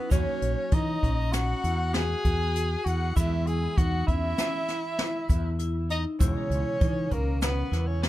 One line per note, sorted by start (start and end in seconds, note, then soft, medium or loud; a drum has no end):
0.00 0.12 B3 soft
0.00 0.11 C#4 soft
0.10 0.24 E2 loud
0.10 3.11 F#3 medium
0.10 3.12 A#3 medium
0.10 0.75 C#4 loud
0.10 3.12 C#4 medium
0.10 3.11 D#4 medium
0.10 0.65 F#4 medium
0.10 0.75 C#5 medium
0.10 kick loud
0.10 closed hi-hat medium
0.10 shaker medium
0.42 0.54 A#1 medium
0.42 closed hi-hat medium
0.72 0.97 E3 medium
0.72 0.99 D#4 medium
0.72 1.34 D#4 medium
0.72 1.36 D#5 medium
0.72 kick loud
0.72 closed hi-hat medium
1.03 1.53 A#1 medium
1.03 1.57 C#4 medium
1.03 kick medium
1.03 closed hi-hat medium
1.33 1.95 F#4 medium
1.33 1.98 F#5 medium
1.33 snare medium
1.33 closed hi-hat medium
1.33 shaker medium
1.63 2.14 E2 medium
1.63 1.90 E4 medium
1.63 closed hi-hat medium
1.93 2.21 F#4 medium
1.93 2.86 G#4 loud
1.93 2.89 G#5 loud
1.93 snare medium
1.93 closed hi-hat medium
2.25 2.75 E2 medium
2.25 2.52 F#4 medium
2.25 kick medium
2.25 closed hi-hat medium
2.55 2.82 F#4 medium
2.55 closed hi-hat medium
2.84 3.10 E2 medium
2.84 3.12 E4 medium
2.84 3.15 F#4 medium
2.84 3.16 F#5 medium
2.84 closed hi-hat medium
3.16 3.66 E2 loud
3.16 6.16 E3 medium
3.16 6.17 F#3 medium
3.16 6.17 G#3 medium
3.16 6.18 B3 medium
3.16 3.70 E4 loud
3.16 3.48 E4 medium
3.16 3.50 E5 medium
3.16 kick loud
3.16 closed hi-hat medium
3.16 shaker medium
3.46 3.79 G#4 loud
3.46 3.80 G#5 medium
3.46 closed hi-hat medium
3.76 4.02 E2 medium
3.76 4.03 D#4 medium
3.76 4.06 F#4 loud
3.76 4.08 F#5 medium
3.76 kick loud
3.76 closed hi-hat medium
4.07 4.33 E2 loud
4.07 4.61 C#4 medium
4.07 5.59 E4 loud
4.07 5.60 E5 loud
4.07 kick medium
4.07 closed hi-hat medium
4.38 snare medium
4.38 closed hi-hat medium
4.38 shaker medium
4.67 4.95 E4 medium
4.67 snare soft
4.67 closed hi-hat medium
4.98 5.25 E4 medium
4.98 snare medium
4.98 closed hi-hat medium
5.29 6.04 E2 medium
5.29 5.56 E4 medium
5.29 kick medium
5.29 closed hi-hat medium
5.29 shaker soft
5.59 5.86 E4 medium
5.59 closed hi-hat medium
5.89 6.17 D#4 medium
5.89 6.04 D#4 medium
5.89 6.05 D#5 medium
5.89 closed hi-hat medium
6.19 6.33 E2 loud
6.19 8.09 B2 medium
6.19 8.09 C#3 medium
6.19 8.09 E3 medium
6.19 8.09 G#3 medium
6.19 7.14 C#4 medium
6.19 6.74 E4 loud
6.19 7.13 C#5 medium
6.19 kick loud
6.19 closed hi-hat medium
6.19 shaker medium
6.50 6.63 C#2 medium
6.50 closed hi-hat medium
6.80 7.06 E3 medium
6.80 7.08 D#4 medium
6.80 kick loud
6.80 closed hi-hat medium
7.11 7.62 C#2 medium
7.11 7.41 A#3 medium
7.11 7.65 C#4 medium
7.11 7.41 A#4 medium
7.11 kick medium
7.11 closed hi-hat medium
7.42 7.89 B3 medium
7.42 7.88 B4 medium
7.42 snare loud
7.42 closed hi-hat medium
7.42 shaker medium
7.71 8.09 E2 medium
7.71 7.99 E4 medium
7.71 snare soft
7.71 closed hi-hat medium
7.87 8.05 C#4 medium
7.87 8.04 C#5 medium
8.03 8.09 B3 medium
8.03 8.09 F#4 medium
8.03 8.09 B4 medium
8.03 snare medium
8.03 closed hi-hat medium